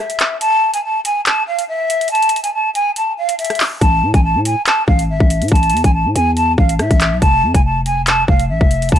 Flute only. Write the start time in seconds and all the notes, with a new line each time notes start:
0.00 E5
0.40 A5
0.74 G#5
0.84 A5
1.05 G#5
1.27 A5
1.47 F5
1.68 E5
2.11 A5
2.43 G#5
2.54 A5
2.75 G#5
2.97 A5
3.18 F5
3.38 E5
3.81 A5
4.14 G#5
4.24 A5
4.46 G#5
4.67 A5
4.87 F5
5.10 E5
5.51 A5
5.84 G#5
5.94 A5
6.15 G#5
6.36 A5
6.58 F5
6.80 E5
7.21 A5
7.55 G#5
7.65 A5
7.86 G#5
8.08 A5
8.28 F5
8.49 E5
8.92 A5